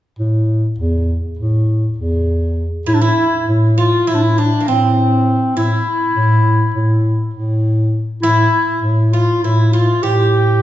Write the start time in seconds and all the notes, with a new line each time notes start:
0.19 A2
0.78 E2
1.38 A2
1.98 E2
2.86 A2 E4
2.94 D4
3.01 E4
3.47 A2
3.77 F4
4.07 A2 E4
4.15 D4
4.23 E4
4.38 D4
4.60 A#3
4.66 A2 C4
5.56 A2 E4
6.15 A2
6.74 A2
7.33 A2
8.22 A2 E4
8.82 A2
9.12 F4
9.41 A2 E4
9.73 F4
10.02 A2 G4